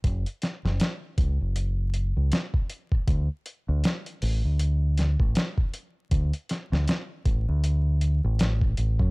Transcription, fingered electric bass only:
X:1
M:4/4
L:1/16
Q:"Swing 16ths" 1/4=79
K:Dlyd
V:1 name="Fingered electric bass" clef=bass
F,,, z2 F,,, z2 C,, F,,,4 C,, z4 | D,, z2 D,, z2 A,,, D,,4 A,,, z4 | D,, z2 D,, z2 A,,, D,,4 A,,,3 A,,, F,, |]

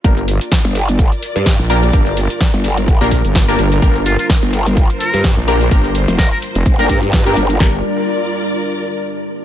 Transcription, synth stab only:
X:1
M:4/4
L:1/16
Q:"Swing 16ths" 1/4=127
K:Gm
V:1 name="Synth stab"
[B,DGB]2 z12 [B,DGB]2 | [B,DGB]2 z6 z [B,DGB]2 z2 [B,DGB]3 | [B,DGB]2 z12 [B,DGB]2 | [B,DGB]2 z6 z [B,DGB]2 z2 [B,DGB]3 |
[B,DGB]2 z12 z2 |]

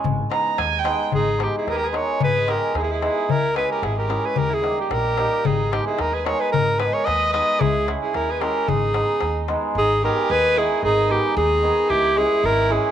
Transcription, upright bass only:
X:1
M:2/4
L:1/8
Q:"Swing 16ths" 1/4=111
K:G#m
V:1 name="Upright bass" clef=bass
G,,, z D,,2 | G,,,2 D,,2 | G,,,2 D,,2 | C,,2 G,,,2 |
D,,2 A,,,2 | G,,,2 D,,2 | G,,,2 D,,2 | C,,2 D,,2 |
G,,,2 D,,2 | G,,,2 D,,2 | G,,,2 D,,2 | C,,2 G,,,2 |]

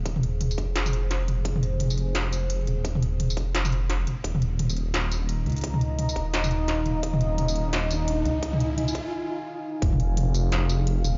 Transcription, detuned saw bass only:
X:1
M:4/4
L:1/8
Q:"Swing 16ths" 1/4=172
K:Fm
V:1 name="Detuned saw bass" clef=bass
E,,,3 F,,,4- F,,, | F,,,4 F,,,3 E,,,- | E,,,3 F,,,4 z | E,,,4 E,,,3 D,,- |
D,,3 E,,,4- E,,, | E,,,4 E,,,3 D,,- | D,,3 z4 z | F,,,4 F,,,3 E,,, |]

